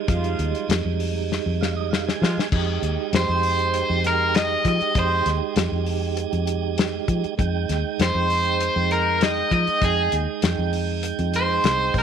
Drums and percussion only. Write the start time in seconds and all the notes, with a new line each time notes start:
0.08 kick, closed hi-hat
0.24 closed hi-hat
0.39 closed hi-hat
0.55 closed hi-hat
0.70 snare, closed hi-hat
1.00 open hi-hat
1.32 snare
1.62 snare
1.93 snare
2.09 snare
2.23 snare
2.39 snare
2.52 kick, crash
2.83 closed hi-hat
3.13 snare, closed hi-hat
3.43 open hi-hat
3.59 closed hi-hat
3.74 closed hi-hat
4.04 snare, closed hi-hat
4.35 snare, closed hi-hat
4.65 kick, closed hi-hat
4.81 closed hi-hat
4.95 kick, closed hi-hat
5.26 snare, closed hi-hat
5.56 snare, closed hi-hat
5.86 open hi-hat
6.17 closed hi-hat
6.33 closed hi-hat
6.47 closed hi-hat
6.78 snare, closed hi-hat
7.08 kick, closed hi-hat
7.24 closed hi-hat
7.39 kick, closed hi-hat
7.69 snare, closed hi-hat
8.00 snare, closed hi-hat
8.30 open hi-hat
8.46 closed hi-hat
8.61 closed hi-hat
8.91 closed hi-hat
9.21 snare, closed hi-hat
9.51 kick, closed hi-hat
9.67 closed hi-hat
9.82 kick, closed hi-hat
10.12 closed hi-hat
10.42 snare, closed hi-hat
10.73 open hi-hat
11.03 closed hi-hat
11.19 closed hi-hat
11.34 closed hi-hat
11.64 snare, closed hi-hat
11.94 kick, open hi-hat